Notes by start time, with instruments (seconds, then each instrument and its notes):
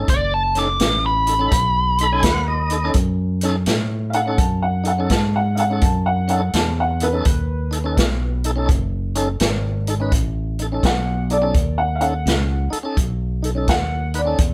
0.08 fingered electric bass F#1, lead electric guitar D5, kick, closed hi-hat
0.34 lead electric guitar A5
0.55 tonewheel organ C#4 D#4 A4, lead electric guitar D6, snare, closed hi-hat
0.79 fingered electric bass A1, snare, closed hi-hat
1.06 lead electric guitar B5
1.27 tonewheel organ D#4 A4, closed hi-hat
1.39 tonewheel organ C#4 D#4 A4
1.52 fingered electric bass B1, kick, closed hi-hat
1.98 tonewheel organ D#4 A4 B5, closed hi-hat
2.12 tonewheel organ C#4 D#4 A4 G#5
2.23 fingered electric bass D#2, tonewheel organ F#5, kick, snare, closed hi-hat
2.48 tonewheel organ D#5
2.70 tonewheel organ D#4 A4, closed hi-hat
2.84 tonewheel organ C#4 D#4 A4
2.94 fingered electric bass F#2, kick, closed hi-hat
3.41 tonewheel organ C#4 D#4 A4, snare, closed hi-hat
3.66 fingered electric bass A2, snare, closed hi-hat
4.10 upright piano F5, closed hi-hat
4.14 tonewheel organ D#4 A4, upright piano F#5
4.26 tonewheel organ C#4 D#4 A4
4.38 fingered electric bass F#2, upright piano A5, kick, closed hi-hat
4.62 upright piano F#5
4.84 tonewheel organ D#4 A4, upright piano F#5, closed hi-hat
4.98 tonewheel organ C#4 D#4 A4
5.10 fingered electric bass G#2, upright piano A5, kick, snare, closed hi-hat
5.36 upright piano F#5
5.55 tonewheel organ D#4 A4, upright piano F5, closed hi-hat
5.60 upright piano F#5
5.70 tonewheel organ C#4 D#4 A4
5.81 fingered electric bass F#2, upright piano A5, kick, closed hi-hat
6.06 upright piano F#5
6.28 tonewheel organ C#4 D#4 A4, upright piano F#5, closed hi-hat
6.53 fingered electric bass E2, upright piano A5, snare, closed hi-hat
6.80 upright piano F#5
7.00 tonewheel organ D#4 A4, upright piano B4, closed hi-hat
7.13 tonewheel organ C#4 D#4 A4
7.25 fingered electric bass D#2, kick, closed hi-hat
7.71 tonewheel organ D#4 A4, closed hi-hat
7.84 tonewheel organ C#4 D#4 A4
7.97 fingered electric bass B1, kick, snare, closed hi-hat
8.44 tonewheel organ D#4 A4, closed hi-hat
8.56 tonewheel organ C#4 D#4 A4
8.69 fingered electric bass F#1, kick, closed hi-hat
9.15 tonewheel organ C#4 D#4 A4, closed hi-hat
9.40 fingered electric bass G#1, snare, closed hi-hat
9.87 tonewheel organ D#4 A4, closed hi-hat
10.00 tonewheel organ C#4 D#4 B4
10.12 fingered electric bass A1, kick, closed hi-hat
10.59 tonewheel organ D#4 A4, closed hi-hat
10.72 tonewheel organ C#4 D#4 A4
10.83 fingered electric bass B1, upright piano F#5, kick, snare, closed hi-hat
11.30 tonewheel organ D#4 A4, upright piano D5, closed hi-hat
11.42 tonewheel organ C#4 D#4 A4
11.54 fingered electric bass D#2, kick, closed hi-hat
11.78 upright piano F#5
11.96 upright piano F5
12.01 tonewheel organ C#4 D#4 A4, upright piano F#5, closed hi-hat
12.26 fingered electric bass C#2, snare, closed hi-hat
12.70 tonewheel organ D#4 A4, muted fingered electric bass stroke, closed hi-hat
12.83 tonewheel organ C#4 D#4 A4
12.97 fingered electric bass B1, kick, closed hi-hat
13.43 tonewheel organ D#4 A4, closed hi-hat
13.55 tonewheel organ C#4 D#4 A4
13.68 fingered electric bass D#2, upright piano F#5, kick, snare, closed hi-hat
14.14 tonewheel organ D#4 B4, closed hi-hat
14.18 upright piano D5
14.25 tonewheel organ C#4 D#4 A4
14.38 fingered electric bass E2, kick, closed hi-hat